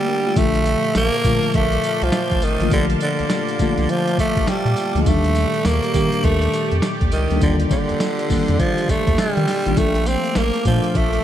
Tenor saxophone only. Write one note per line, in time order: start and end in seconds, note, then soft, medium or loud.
0.00 0.39 G3 loud
0.37 0.96 A3 loud
0.97 1.57 A#3 loud
1.56 2.05 A3 loud
2.03 2.46 F3 loud
2.44 2.72 D#3 loud
2.73 2.86 D3 loud
3.03 3.92 D3 medium
3.91 4.19 F3 loud
4.20 4.50 A3 loud
4.49 5.03 G3 loud
5.02 5.09 G#3 medium
5.08 5.68 A3 loud
5.66 6.26 A#3 loud
6.25 6.72 A3 loud
7.13 7.40 D#3 medium
7.43 7.56 D3 medium
7.72 8.61 D3 medium
8.60 8.92 F3 loud
8.90 9.21 A3 loud
9.19 9.79 G3 loud
9.78 10.09 A3 loud
10.08 10.39 C4 loud
10.37 10.66 A#3 loud
10.67 10.98 F3 medium
10.96 11.24 A3 loud